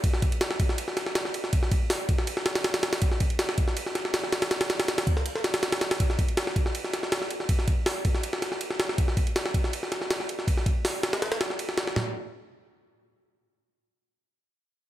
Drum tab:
RD |x-xxx-x-x-x-x-x-|x-x---x-x-xxxxxx|x-xxx-x-x-x-x-xx|xxxxxxx-x-xxxxxx|
HH |----------------|----o-----------|----------------|----------------|
SD |-o--oo-o-ooooo-o|-o--o--o-ooooooo|-o--oo-o-ooooooo|oooooo-o-ooooooo|
FT |----------------|----------------|----------------|----------------|
BD |o-o---o---------|o-o---o---------|o-o---o---------|------o---------|

RD |x-xxx-x-x-x-x-x-|x-x---x-x-x-x-x-|x-xxx-x-x-x-x-x-|x-x---xxxxx-x-x-|
HH |----------------|----o-----------|----------------|----o-----------|
SD |-o--oo-o-ooooo-o|-o--o--o-ooo-ooo|-o--oo-o-ooooo-o|-o--o-oooooo-ooo|
FT |----------------|----------------|----------------|----------------|
BD |o-o---o---------|o-o---o---------|o-o---o---------|o-o-------------|

RD |----------------|----------------|
HH |----------------|----------------|
SD |o---------------|----------------|
FT |o---------------|----------------|
BD |----------------|----------------|